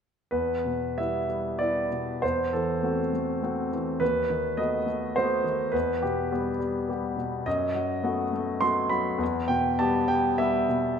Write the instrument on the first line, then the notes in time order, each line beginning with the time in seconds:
grand piano
0.31 E2 B4
0.65 B2
0.98 G3 B3 E4 E5
1.29 G3
1.59 G3 B3 E4 D5
1.91 B2
2.22 E2 C5
2.53 E3 A4
2.83 A3 C4 F#4
3.13 A3
3.42 A3 C4 F#4
3.72 E3
4.00 D#2 B4
4.30 D#3
4.57 A3 B3 F#4 D#5
4.86 A3
5.16 A3 B3 F#4 C5
5.44 D#3
5.72 E2 B4
6.02 B2 G4
6.32 G3 B3 G4
6.59 G3
6.89 G3 B3 G4
7.17 B2
7.46 F#2 D#5
7.75 F#3
8.03 A3 B3 F#4
8.33 A3
8.61 A3 B3 F#4 C6
8.90 F#3 B5
9.18 E2
9.48 B2 G5
9.79 G3 B3 G4 A5
10.08 G3 G5
10.38 G3 B3 G4 E5
10.69 B2